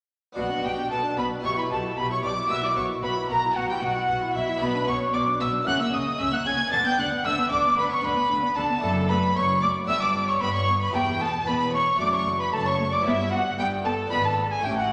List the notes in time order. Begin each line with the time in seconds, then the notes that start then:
0.32 B3 D4 F#4
0.37 B1 B2 B3 F#4 F#5
0.51 D4
0.64 B1 B2 B3 G4 G5
0.78 D4
0.91 B1 B2 B3 A4 A5
1.05 D4
1.17 B1 B2 B3 B4 B5
1.31 D4
1.40 B1 B3 E4 G4
1.44 B2 G4 C#5 C#6
1.57 E4 B4 B5
1.70 B1 B2 G4 A4 A5
1.84 E4
1.97 B1 B2 G4 B4 B5
2.10 E4 C#5 C#6
2.23 B1 B2 G4 D5 D6
2.36 E4
2.45 A#3 E4 F#4
2.50 B1 B2 F#4 E5 E6
2.63 E4 D5 D6
2.76 B1 B2 F#4 C#5 C#6
2.90 E4
3.02 B1 B2 F#4 B4 B5
3.16 E4
3.29 B1 B2 F#4 A#4 A#5
3.43 E4
3.55 B1 B2 F#4 F#5
3.68 E4 G4 G5
3.81 B1 B2 F#4 F#5
3.96 E4
4.08 B1 B2 F#4
4.22 E4
4.34 B1 B2 E4 F#4 E5
4.48 E4
4.56 B3 D4 F#4
4.60 B1 B2 B3 B4 B5
4.75 D4
4.87 B1 B2 B3 C#5 C#6
5.01 D4
5.13 B1 B2 B3 D5 D6
5.27 D4
5.40 B1 B2 B3 E5 E6
5.53 D4
5.62 A#3 E4 A#4 F#6
5.66 C#2 C#3 C#4 F#5 F#6
5.79 A#3 E5 E6
5.93 C#2 C#3 C#4 D#5 D#6
6.07 A#3
6.19 C#2 C#3 C#4 E5 E6
6.32 A#3 F#5 F#6
6.46 C#2 C#3 C#4 G#5 G#6
6.59 A#3
6.67 B3 D4 D5
6.72 D2 D3 D4 A5 A6
6.85 B3 G5 G6
6.98 D2 D3 D4 F#5 F#6
7.12 B3
7.24 D2 D3 D4 E5 E6
7.38 B3
7.51 D2 D3 D4 D5 D6
7.64 B3
7.77 D2 D3 D4 B4 B5
7.90 B3 C#5 C#6
8.03 D2 D3 D4 B4 B5
8.17 B3
8.30 D2 D3 D4
8.44 B3
8.56 D2 D3 D4 A4 A5
8.70 B3
8.78 A3 D4 A4
8.82 F#1 F#2 A3 A4 A5
9.09 A3 B4 B5
9.35 F#1 F#2 A3 C#5 C#6
9.61 A3 D5 D6
9.84 B3 D4 G4 E5 E6
9.88 G1 G2 B3
10.01 D5 D6
10.15 B3
10.27 C#5 C#6
10.40 G1 G2 B3 B4 B5
10.54 C#5 C#6
10.68 B3
10.80 B4 B5
10.89 B3 E4 G4
10.93 E1 E2 B3 G4 G5
11.20 B3 A4 A5
11.47 E1 E2 B3 B4 B5
11.73 B3 C#5 C#6
11.95 A3 D4 F#4
11.99 F#1 F#2 A3 D5 D6
12.13 C#5 C#6
12.26 A3
12.39 B4 B5
12.52 F#1 F#2 A3 A4 A5
12.65 C#5 C#6
12.80 A3
12.91 D5 D6
13.00 B3 E4
13.05 G1 G2 B3 E4 E5
13.31 B3 F#4 F#5
13.57 G1 G2 B3 G4 G5
13.84 B3 A4 A5
14.06 B3 D4 F4
14.10 G#1 G#2 B3 B4 B5
14.24 A4 A5
14.38 B3
14.51 G#4 G#5
14.59 A3 C#4 E4
14.63 A1 A2 C#4 G4 G5
14.77 F#4 F#5